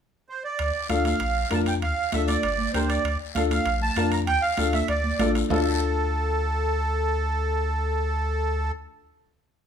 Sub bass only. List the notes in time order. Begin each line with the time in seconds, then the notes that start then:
0.59 D2
0.90 D2
1.21 A#1
1.51 F2
1.82 D2
2.13 D2
2.44 G1
2.74 D2
3.04 D2
3.35 D2
3.66 A#1
3.96 F2
4.27 D2
4.58 D2
4.88 D2
5.19 A1
5.50 D2